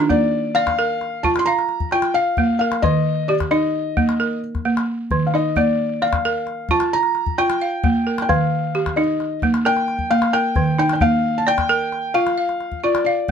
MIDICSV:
0, 0, Header, 1, 4, 480
1, 0, Start_track
1, 0, Tempo, 454890
1, 106, Time_signature, 12, 3, 24, 8
1, 14046, End_track
2, 0, Start_track
2, 0, Title_t, "Felt piano"
2, 0, Program_c, 0, 0
2, 105, Note_on_c, 0, 74, 86
2, 552, Note_off_c, 0, 74, 0
2, 577, Note_on_c, 0, 77, 102
2, 1301, Note_on_c, 0, 81, 87
2, 1325, Note_off_c, 0, 77, 0
2, 1354, Note_off_c, 0, 81, 0
2, 1467, Note_on_c, 0, 84, 78
2, 1536, Note_on_c, 0, 82, 92
2, 1544, Note_off_c, 0, 84, 0
2, 1988, Note_off_c, 0, 82, 0
2, 2028, Note_on_c, 0, 79, 92
2, 2252, Note_off_c, 0, 79, 0
2, 2261, Note_on_c, 0, 77, 89
2, 2711, Note_off_c, 0, 77, 0
2, 2733, Note_on_c, 0, 77, 79
2, 2964, Note_off_c, 0, 77, 0
2, 2980, Note_on_c, 0, 75, 89
2, 3462, Note_on_c, 0, 74, 76
2, 3479, Note_off_c, 0, 75, 0
2, 3517, Note_off_c, 0, 74, 0
2, 3702, Note_on_c, 0, 75, 83
2, 4624, Note_off_c, 0, 75, 0
2, 5557, Note_on_c, 0, 77, 55
2, 5623, Note_off_c, 0, 77, 0
2, 5643, Note_on_c, 0, 75, 78
2, 5878, Note_on_c, 0, 74, 77
2, 5883, Note_off_c, 0, 75, 0
2, 6353, Note_on_c, 0, 77, 80
2, 6368, Note_off_c, 0, 74, 0
2, 7078, Note_on_c, 0, 81, 85
2, 7093, Note_off_c, 0, 77, 0
2, 7316, Note_on_c, 0, 82, 101
2, 7321, Note_off_c, 0, 81, 0
2, 7759, Note_off_c, 0, 82, 0
2, 7790, Note_on_c, 0, 79, 93
2, 8634, Note_off_c, 0, 79, 0
2, 8676, Note_on_c, 0, 79, 64
2, 8748, Note_on_c, 0, 77, 84
2, 8749, Note_off_c, 0, 79, 0
2, 9458, Note_on_c, 0, 75, 70
2, 9490, Note_off_c, 0, 77, 0
2, 9909, Note_off_c, 0, 75, 0
2, 10194, Note_on_c, 0, 79, 97
2, 10663, Note_on_c, 0, 77, 89
2, 10686, Note_off_c, 0, 79, 0
2, 10889, Note_off_c, 0, 77, 0
2, 10903, Note_on_c, 0, 79, 98
2, 11372, Note_off_c, 0, 79, 0
2, 11388, Note_on_c, 0, 79, 93
2, 11520, Note_off_c, 0, 79, 0
2, 11536, Note_on_c, 0, 79, 68
2, 11619, Note_off_c, 0, 79, 0
2, 11626, Note_on_c, 0, 77, 94
2, 12007, Note_on_c, 0, 81, 77
2, 12047, Note_off_c, 0, 77, 0
2, 12094, Note_off_c, 0, 81, 0
2, 12111, Note_on_c, 0, 79, 107
2, 12813, Note_on_c, 0, 77, 89
2, 12852, Note_off_c, 0, 79, 0
2, 13500, Note_off_c, 0, 77, 0
2, 13546, Note_on_c, 0, 74, 82
2, 13749, Note_off_c, 0, 74, 0
2, 13765, Note_on_c, 0, 74, 75
2, 14046, Note_off_c, 0, 74, 0
2, 14046, End_track
3, 0, Start_track
3, 0, Title_t, "Balafon"
3, 0, Program_c, 1, 12
3, 0, Note_on_c, 1, 51, 79
3, 0, Note_on_c, 1, 62, 62
3, 100, Note_on_c, 1, 58, 78
3, 109, Note_off_c, 1, 51, 0
3, 207, Note_off_c, 1, 62, 0
3, 583, Note_off_c, 1, 58, 0
3, 589, Note_on_c, 1, 74, 69
3, 829, Note_on_c, 1, 70, 85
3, 1309, Note_off_c, 1, 70, 0
3, 1309, Note_off_c, 1, 74, 0
3, 1314, Note_on_c, 1, 65, 82
3, 1553, Note_on_c, 1, 77, 66
3, 1791, Note_off_c, 1, 65, 0
3, 2031, Note_on_c, 1, 65, 69
3, 2258, Note_off_c, 1, 77, 0
3, 2271, Note_on_c, 1, 77, 68
3, 2510, Note_off_c, 1, 65, 0
3, 2511, Note_on_c, 1, 58, 73
3, 2754, Note_on_c, 1, 70, 63
3, 2990, Note_off_c, 1, 58, 0
3, 2990, Note_off_c, 1, 77, 0
3, 2995, Note_on_c, 1, 51, 83
3, 3232, Note_off_c, 1, 70, 0
3, 3472, Note_off_c, 1, 51, 0
3, 3472, Note_on_c, 1, 67, 66
3, 3707, Note_on_c, 1, 63, 84
3, 4188, Note_off_c, 1, 63, 0
3, 4189, Note_on_c, 1, 58, 76
3, 4191, Note_off_c, 1, 67, 0
3, 4430, Note_on_c, 1, 70, 61
3, 4669, Note_off_c, 1, 58, 0
3, 4909, Note_on_c, 1, 58, 69
3, 5150, Note_off_c, 1, 70, 0
3, 5389, Note_off_c, 1, 58, 0
3, 5397, Note_on_c, 1, 51, 76
3, 5632, Note_on_c, 1, 63, 60
3, 5873, Note_off_c, 1, 51, 0
3, 5874, Note_on_c, 1, 58, 82
3, 6111, Note_off_c, 1, 63, 0
3, 6351, Note_off_c, 1, 58, 0
3, 6354, Note_on_c, 1, 74, 62
3, 6597, Note_on_c, 1, 70, 80
3, 7072, Note_off_c, 1, 74, 0
3, 7079, Note_on_c, 1, 65, 75
3, 7314, Note_off_c, 1, 70, 0
3, 7554, Note_off_c, 1, 65, 0
3, 7793, Note_on_c, 1, 65, 73
3, 8035, Note_on_c, 1, 77, 67
3, 8271, Note_off_c, 1, 65, 0
3, 8273, Note_on_c, 1, 58, 73
3, 8511, Note_on_c, 1, 70, 60
3, 8750, Note_on_c, 1, 51, 79
3, 8751, Note_off_c, 1, 58, 0
3, 8752, Note_off_c, 1, 77, 0
3, 8990, Note_off_c, 1, 70, 0
3, 9229, Note_off_c, 1, 51, 0
3, 9232, Note_on_c, 1, 67, 63
3, 9467, Note_on_c, 1, 63, 81
3, 9948, Note_off_c, 1, 63, 0
3, 9951, Note_off_c, 1, 67, 0
3, 9951, Note_on_c, 1, 58, 81
3, 10186, Note_on_c, 1, 70, 63
3, 10430, Note_off_c, 1, 58, 0
3, 10666, Note_on_c, 1, 58, 74
3, 10893, Note_off_c, 1, 70, 0
3, 10905, Note_on_c, 1, 70, 67
3, 11144, Note_on_c, 1, 51, 78
3, 11147, Note_off_c, 1, 58, 0
3, 11381, Note_on_c, 1, 63, 68
3, 11621, Note_on_c, 1, 58, 85
3, 11627, Note_off_c, 1, 51, 0
3, 11627, Note_off_c, 1, 70, 0
3, 11865, Note_off_c, 1, 63, 0
3, 12099, Note_on_c, 1, 74, 68
3, 12105, Note_off_c, 1, 58, 0
3, 12340, Note_on_c, 1, 70, 88
3, 12820, Note_on_c, 1, 65, 79
3, 12825, Note_off_c, 1, 70, 0
3, 12825, Note_off_c, 1, 74, 0
3, 13059, Note_on_c, 1, 77, 61
3, 13305, Note_off_c, 1, 65, 0
3, 13545, Note_on_c, 1, 65, 70
3, 13773, Note_off_c, 1, 77, 0
3, 13785, Note_on_c, 1, 77, 66
3, 14028, Note_off_c, 1, 65, 0
3, 14046, Note_off_c, 1, 77, 0
3, 14046, End_track
4, 0, Start_track
4, 0, Title_t, "Calabash"
4, 105, Note_on_c, 9, 36, 61
4, 211, Note_off_c, 9, 36, 0
4, 590, Note_on_c, 9, 38, 19
4, 695, Note_off_c, 9, 38, 0
4, 706, Note_on_c, 9, 36, 49
4, 706, Note_on_c, 9, 38, 48
4, 811, Note_off_c, 9, 36, 0
4, 811, Note_off_c, 9, 38, 0
4, 1069, Note_on_c, 9, 38, 18
4, 1175, Note_off_c, 9, 38, 0
4, 1309, Note_on_c, 9, 36, 54
4, 1415, Note_off_c, 9, 36, 0
4, 1432, Note_on_c, 9, 38, 45
4, 1537, Note_off_c, 9, 38, 0
4, 1674, Note_on_c, 9, 38, 19
4, 1780, Note_off_c, 9, 38, 0
4, 1781, Note_on_c, 9, 38, 16
4, 1886, Note_off_c, 9, 38, 0
4, 1903, Note_on_c, 9, 36, 43
4, 2008, Note_off_c, 9, 36, 0
4, 2018, Note_on_c, 9, 38, 16
4, 2123, Note_off_c, 9, 38, 0
4, 2134, Note_on_c, 9, 38, 44
4, 2240, Note_off_c, 9, 38, 0
4, 2502, Note_on_c, 9, 36, 48
4, 2608, Note_off_c, 9, 36, 0
4, 2867, Note_on_c, 9, 38, 39
4, 2972, Note_off_c, 9, 38, 0
4, 2987, Note_on_c, 9, 36, 52
4, 2987, Note_on_c, 9, 38, 15
4, 3092, Note_off_c, 9, 36, 0
4, 3092, Note_off_c, 9, 38, 0
4, 3471, Note_on_c, 9, 38, 16
4, 3577, Note_off_c, 9, 38, 0
4, 3592, Note_on_c, 9, 36, 41
4, 3592, Note_on_c, 9, 38, 42
4, 3698, Note_off_c, 9, 36, 0
4, 3698, Note_off_c, 9, 38, 0
4, 3710, Note_on_c, 9, 38, 16
4, 3815, Note_off_c, 9, 38, 0
4, 4188, Note_on_c, 9, 36, 51
4, 4293, Note_off_c, 9, 36, 0
4, 4314, Note_on_c, 9, 38, 42
4, 4420, Note_off_c, 9, 38, 0
4, 4441, Note_on_c, 9, 38, 17
4, 4547, Note_off_c, 9, 38, 0
4, 4800, Note_on_c, 9, 36, 43
4, 4800, Note_on_c, 9, 38, 17
4, 4905, Note_off_c, 9, 36, 0
4, 4905, Note_off_c, 9, 38, 0
4, 5035, Note_on_c, 9, 38, 42
4, 5140, Note_off_c, 9, 38, 0
4, 5388, Note_on_c, 9, 36, 54
4, 5493, Note_off_c, 9, 36, 0
4, 5868, Note_on_c, 9, 36, 58
4, 5973, Note_off_c, 9, 36, 0
4, 6351, Note_on_c, 9, 38, 18
4, 6457, Note_off_c, 9, 38, 0
4, 6465, Note_on_c, 9, 36, 48
4, 6465, Note_on_c, 9, 38, 47
4, 6570, Note_off_c, 9, 36, 0
4, 6570, Note_off_c, 9, 38, 0
4, 6825, Note_on_c, 9, 38, 19
4, 6931, Note_off_c, 9, 38, 0
4, 7056, Note_on_c, 9, 36, 59
4, 7161, Note_off_c, 9, 36, 0
4, 7177, Note_on_c, 9, 38, 50
4, 7282, Note_off_c, 9, 38, 0
4, 7419, Note_on_c, 9, 38, 20
4, 7524, Note_off_c, 9, 38, 0
4, 7543, Note_on_c, 9, 38, 19
4, 7649, Note_off_c, 9, 38, 0
4, 7665, Note_on_c, 9, 36, 48
4, 7771, Note_off_c, 9, 36, 0
4, 7786, Note_on_c, 9, 38, 19
4, 7892, Note_off_c, 9, 38, 0
4, 7910, Note_on_c, 9, 38, 52
4, 8016, Note_off_c, 9, 38, 0
4, 8268, Note_on_c, 9, 36, 66
4, 8374, Note_off_c, 9, 36, 0
4, 8634, Note_on_c, 9, 38, 53
4, 8740, Note_off_c, 9, 38, 0
4, 8752, Note_on_c, 9, 36, 67
4, 8858, Note_off_c, 9, 36, 0
4, 9231, Note_on_c, 9, 38, 20
4, 9337, Note_off_c, 9, 38, 0
4, 9352, Note_on_c, 9, 36, 51
4, 9352, Note_on_c, 9, 38, 50
4, 9457, Note_off_c, 9, 36, 0
4, 9457, Note_off_c, 9, 38, 0
4, 9710, Note_on_c, 9, 38, 19
4, 9815, Note_off_c, 9, 38, 0
4, 9943, Note_on_c, 9, 36, 61
4, 10048, Note_off_c, 9, 36, 0
4, 10067, Note_on_c, 9, 38, 46
4, 10172, Note_off_c, 9, 38, 0
4, 10305, Note_on_c, 9, 38, 20
4, 10411, Note_off_c, 9, 38, 0
4, 10426, Note_on_c, 9, 38, 20
4, 10532, Note_off_c, 9, 38, 0
4, 10537, Note_on_c, 9, 36, 48
4, 10643, Note_off_c, 9, 36, 0
4, 10664, Note_on_c, 9, 38, 20
4, 10770, Note_off_c, 9, 38, 0
4, 10783, Note_on_c, 9, 38, 49
4, 10889, Note_off_c, 9, 38, 0
4, 11138, Note_on_c, 9, 36, 59
4, 11244, Note_off_c, 9, 36, 0
4, 11496, Note_on_c, 9, 38, 50
4, 11601, Note_off_c, 9, 38, 0
4, 11614, Note_on_c, 9, 36, 60
4, 11720, Note_off_c, 9, 36, 0
4, 12218, Note_on_c, 9, 36, 47
4, 12218, Note_on_c, 9, 38, 46
4, 12324, Note_off_c, 9, 36, 0
4, 12324, Note_off_c, 9, 38, 0
4, 12583, Note_on_c, 9, 38, 18
4, 12688, Note_off_c, 9, 38, 0
4, 12943, Note_on_c, 9, 38, 44
4, 13049, Note_off_c, 9, 38, 0
4, 13180, Note_on_c, 9, 38, 18
4, 13286, Note_off_c, 9, 38, 0
4, 13301, Note_on_c, 9, 38, 17
4, 13407, Note_off_c, 9, 38, 0
4, 13418, Note_on_c, 9, 36, 42
4, 13523, Note_off_c, 9, 36, 0
4, 13546, Note_on_c, 9, 38, 17
4, 13652, Note_off_c, 9, 38, 0
4, 13662, Note_on_c, 9, 38, 44
4, 13768, Note_off_c, 9, 38, 0
4, 14046, End_track
0, 0, End_of_file